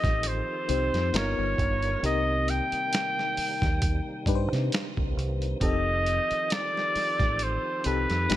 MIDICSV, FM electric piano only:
0, 0, Header, 1, 2, 480
1, 0, Start_track
1, 0, Tempo, 895522
1, 1086, Time_signature, 4, 2, 24, 8
1, 4484, End_track
2, 0, Start_track
2, 0, Title_t, "FM electric piano"
2, 0, Program_c, 0, 5
2, 0, Control_c, 0, 64, 127
2, 0, Note_on_c, 0, 60, 65
2, 0, Note_on_c, 0, 63, 66
2, 0, Note_on_c, 0, 67, 60
2, 0, Note_on_c, 0, 69, 77
2, 72, Note_off_c, 0, 60, 0
2, 73, Note_off_c, 0, 63, 0
2, 75, Note_off_c, 0, 67, 0
2, 78, Note_off_c, 0, 69, 0
2, 367, Note_on_c, 0, 60, 74
2, 368, Note_on_c, 0, 63, 61
2, 376, Note_on_c, 0, 67, 61
2, 378, Note_on_c, 0, 72, 76
2, 604, Note_on_c, 0, 59, 70
2, 605, Note_off_c, 0, 63, 0
2, 607, Note_off_c, 0, 60, 0
2, 611, Note_off_c, 0, 67, 0
2, 611, Note_on_c, 0, 63, 68
2, 613, Note_off_c, 0, 72, 0
2, 614, Control_c, 0, 64, 0
2, 614, Note_on_c, 0, 65, 69
2, 616, Note_on_c, 0, 70, 87
2, 704, Control_c, 0, 64, 127
2, 1058, Note_off_c, 0, 59, 0
2, 1062, Note_off_c, 0, 63, 0
2, 1063, Note_off_c, 0, 65, 0
2, 1064, Note_off_c, 0, 70, 0
2, 1086, Note_on_c, 0, 60, 67
2, 1089, Note_on_c, 0, 63, 68
2, 1094, Control_c, 0, 64, 0
2, 1095, Note_on_c, 0, 67, 61
2, 1098, Note_on_c, 0, 70, 76
2, 1173, Control_c, 0, 64, 127
2, 1992, Note_off_c, 0, 60, 0
2, 1994, Note_off_c, 0, 63, 0
2, 1996, Note_off_c, 0, 67, 0
2, 1998, Note_off_c, 0, 70, 0
2, 2287, Note_on_c, 0, 62, 89
2, 2288, Note_on_c, 0, 63, 75
2, 2294, Note_on_c, 0, 67, 78
2, 2297, Note_on_c, 0, 71, 77
2, 2330, Note_off_c, 0, 71, 0
2, 2333, Note_on_c, 0, 72, 93
2, 2966, Note_off_c, 0, 62, 0
2, 2967, Note_off_c, 0, 63, 0
2, 2969, Note_off_c, 0, 67, 0
2, 2989, Note_off_c, 0, 72, 0
2, 3003, Note_on_c, 0, 60, 66
2, 3009, Note_on_c, 0, 63, 65
2, 3011, Note_on_c, 0, 67, 63
2, 3013, Control_c, 0, 64, 0
2, 3016, Note_on_c, 0, 69, 78
2, 3108, Control_c, 0, 64, 127
2, 3910, Note_off_c, 0, 60, 0
2, 3913, Note_off_c, 0, 63, 0
2, 3915, Note_off_c, 0, 67, 0
2, 3917, Note_off_c, 0, 69, 0
2, 4204, Note_on_c, 0, 60, 64
2, 4211, Note_on_c, 0, 63, 64
2, 4213, Note_on_c, 0, 67, 69
2, 4215, Note_on_c, 0, 69, 80
2, 4441, Note_off_c, 0, 63, 0
2, 4444, Note_on_c, 0, 59, 77
2, 4445, Note_off_c, 0, 60, 0
2, 4448, Note_on_c, 0, 63, 73
2, 4450, Note_off_c, 0, 67, 0
2, 4450, Note_on_c, 0, 65, 69
2, 4451, Note_off_c, 0, 69, 0
2, 4454, Control_c, 0, 64, 0
2, 4456, Note_on_c, 0, 67, 81
2, 4484, Note_off_c, 0, 59, 0
2, 4484, Note_off_c, 0, 63, 0
2, 4484, Note_off_c, 0, 65, 0
2, 4484, Note_off_c, 0, 67, 0
2, 4484, End_track
0, 0, End_of_file